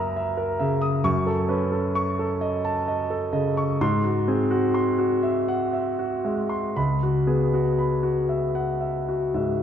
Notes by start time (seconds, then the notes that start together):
Already playing: F#2 A#3 A#4 B4 E5 A#5 D#6
0.16 E5
0.37 A#4
0.59 C#3 E5
0.81 D#6
1.04 F#2 C#6
1.27 A4
1.49 C#4 B4
1.72 A4
1.95 C#6
2.19 A4
2.41 D#5
2.65 A5
2.88 D#5
3.10 A4
3.33 C#3 D#5
3.57 C#6
3.81 G#2 C6
4.04 F#4
4.28 C4 G#4
4.51 F#4
4.74 C6
4.99 F#4
5.23 E5
5.48 F#5
5.73 E5
5.99 F#4
6.25 G#3 E5
6.49 C6
6.76 C#2 B5
7.03 F#4
7.27 B3 G#4
7.54 F#4
7.79 B5
8.03 F#4
8.29 E5
8.55 F#5
8.81 E5
9.09 F#4
9.34 G#2 E5